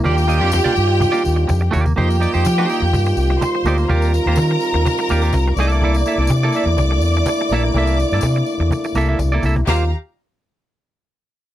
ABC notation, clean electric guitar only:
X:1
M:4/4
L:1/16
Q:1/4=125
K:Fdor
V:1 name="Clean electric guitar"
[B,FGd]2 [B,FGe] [B,FGd] z [B,FGd]2 z2 [B,FGd]2 z3 [B,FGd]2 | [B,EGc]2 [B,EGd] [B,EGc] z [B,EGc] [B,EGd] z6 z [B,EGd]2 | [B,FGd]2 z [B,FGc] z6 [B,FGd] [B,FGd] z2 [B,=E=A=e] [B,EAd] | [B,=E=Ad]2 [B,EA=e] [B,EAd] z [B,EAd] [B,EAe] z6 z [B,EAe]2 |
[B,=E=A=e]2 z [B,EAd] z6 [B,EAe] [B,EAe] z [B,EAd] [B,EAe] z | [B,FGc] z12 z3 |]